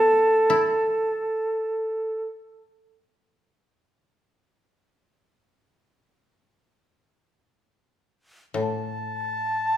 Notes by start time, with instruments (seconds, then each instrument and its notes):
Already playing: koto A2 E3 A3 B3, shakuhachi A4
0.50 koto E4
8.54 koto A2
8.59 shakuhachi A5